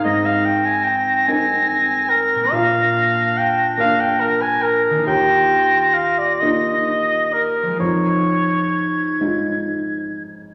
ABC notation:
X:1
M:6/8
L:1/16
Q:3/8=46
K:Eb
V:1 name="Flute"
b'12- | b'12 | b'8- b'2 z2 | a'8- a'2 z2 |]
V:2 name="Cor anglais"
e f g a g2 a4 B2 | f4 g2 f g B a B2 | g4 f d e4 B2 | _d6 z6 |]
V:3 name="Clarinet"
C12 | D12 | F8- F2 z2 | E8- E2 z2 |]
V:4 name="Harp"
[A,,CEAB]12 | [B,,B,DB]12 | [E,B,EF]12 | [F,A,EF]12 |]
V:5 name="Felt piano"
A,,6 [CEB]6 | B,,6 [B,DB]6 | E,,6 [B,EF]6 | F,,6 [A,EF]6 |]